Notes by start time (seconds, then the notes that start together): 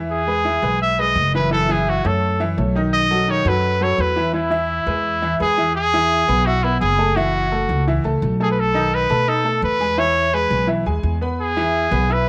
Already playing: E2 E3 E4 E5
0.11 G#4
0.27 G#3 G#4 B4
0.45 E3 E4 E5
0.62 B1 G#3 G#4 B4
0.82 E5
0.99 G#3 G#4 B4 D#5
1.15 F#1
1.35 E3 E4 B4 E5
1.51 E3 E4 A4 E5
1.69 E3 E4 G#4 E5
1.89 F#4
2.05 F#2 A3 A4 C#5
2.40 E3 E4 E5
2.57 B1 A3 A4 C#5
2.75 D#3 D#4 D#5
2.94 D#5
3.10 F#3 F#4 A4
3.28 D#3 D#4 C#5 D#5
3.45 F#2 F#3 F#4 A4 B4
3.81 F#3 F#4 A4 C#5
3.98 E2 B4
4.16 E3 E4 E5
4.33 E3 E4 E5
4.50 E3 E4 E5
4.86 E2 G#3 G#4 B4
5.22 E3 E4 E5
5.40 E2 G#3 G#4 B4
5.58 E3 E4 E5
5.75 G#4
5.93 E3 E4 E5
6.28 B1 B3 B4 B5
6.46 E4 F#4 E5 E6
6.63 B3 E4 B4 B5
6.81 F#1 G#4
6.99 A3 A4 A5
7.16 E3 E4 F#4 E5
7.52 A3 A4 A5
7.69 C#2
7.87 E3 E4 E5
8.04 C#2 A3 A4 A5
8.22 B1
8.40 A3 G#4 A4 A5
8.51 B4
8.60 A4
8.74 D#3 D#4 D#5
8.94 B4
9.10 B2 A3 A4 A5
9.27 D#4 A4 D#5 D#6
9.44 A3 A4 A5
9.62 E2 B4
9.80 G#3 G#4 G#5
9.97 E3 E4 C#5 E5
10.33 G#3 G#4 B4 G#5
10.50 B1
10.67 E3 E4 E5
10.86 D#2 G#3 G#4 G#5
11.03 E2
11.21 B3 B4 B5
11.41 G#4
11.57 E3 E4 E5
11.91 B1 B3 B4 B5
12.10 E4 B4 E5 E6